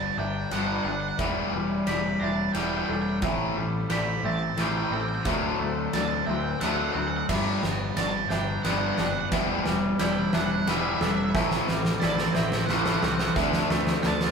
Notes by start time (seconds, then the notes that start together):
Already playing: G1 G2 D3 G3 B3 D4 G4 B4 D5 A5
0.18 G1 G2 D3 D4 E5 G5
0.51 G1 G2 D3 G3 B3 F#5, snare, ride
0.59 F#5
0.67 F#5
0.76 F#5
0.84 G1 G2 D4 D5 F#5
0.88 D3 F#5
1.01 F#5
1.09 F#5
1.19 E1 E2 E3 G3 B3 E4 E5, kick, snare, ride
1.53 E1 E3 G3
1.87 E1 E3 G3 G4 D5 B5, snare, ride
2.20 E1 E3 G3 D4 E5 A5
2.53 E1 E3 G3 B3 G5, snare, ride
2.61 G5
2.70 G5
2.77 G5
2.86 E1 E3 D4 G5
2.90 G3 A4 G5
3.02 G5
3.09 G5
3.22 A1 A2 E3 A3 C4 E4 A4 C5 E5, kick, snare, ride
3.56 A1 A2 E3 G3
3.90 A1 A2 E3 G4 D5 B5, snare, ride
4.23 A1 A2 E3 C4 E5 A5
4.57 A1 A2 E3 G3 A3, snare, ride
4.61 G5
4.68 G5
4.77 G5
4.84 G5
4.91 A1 A2 E3 C4 A4 G5
5.01 G5
5.09 G5
5.15 G5
5.25 D2 D3 F#3 A3 D4 E5, kick, snare, ride
5.59 D2 D3 F#3 A3
5.93 D2 D3 F#3 D5 A5, snare, ride
6.26 D2 D3 F#3 C4 E5 G5
6.60 D2 D3 F#3 A3 F#5, snare, ride
6.69 F#5
6.78 F#5
6.83 F#5
6.93 D2 D3 C4 A4 F#5
6.97 F#3 F#5
7.08 F#5
7.17 F#5
7.29 G1 G2 D3 G3 B3 D4 G4 B4 E5, kick, snare, crash
7.63 G1 G2 D3 B3, snare
7.96 G1 G2 D3 D5 A5, snare, ride
8.30 G1 G2 D3 D4 E5 G5, snare
8.63 G1 G2 D3 G3 B3 F#5, snare, ride
8.71 F#5
8.80 F#5
8.88 F#5
8.95 F#1 G2 D4 D5 F#5, snare
8.99 D3
9.04 F#5
9.10 F#5
9.19 F#5
9.32 E1 E2 E3 G3 B3 E4 E5, kick, snare, ride
9.66 E1 E3 G3, snare
9.99 E1 E3 G3 E4 D5 G5, snare, ride
10.33 E1 E3 G3 D4 E5 F#5, snare
10.67 E1 E3 G3 B3 E5, snare, ride
10.77 E5
10.84 E5
10.94 E5
11.00 E1 E3 G3 D4 A4 E5, snare
11.09 E5
11.17 E5
11.24 E5
11.34 A1 A2 E3 A3 C4 A4 C5 E5, kick, snare
11.51 snare
11.69 A1 A2 E3 G3, snare
11.85 snare
12.00 A1 A2 E3 E4 D5 A5, snare
12.18 snare
12.35 A1 A2 E3 C4 E5 G5, snare
12.52 snare
12.66 A1 A2 E3 G3 A3 F#5, snare
12.74 F#5
12.82 F#5, snare
12.90 F#5
12.98 F#5
13.03 C2 A2 E3 C4 A4 F#5, snare
13.15 F#5
13.19 snare
13.24 F#5
13.36 D2 D3 F#3 A3 D4 C5 E5, kick, snare
13.53 snare
13.70 D2 D3 A3, snare
13.87 snare
14.03 D2 D3 A3 D5 A5, snare
14.21 snare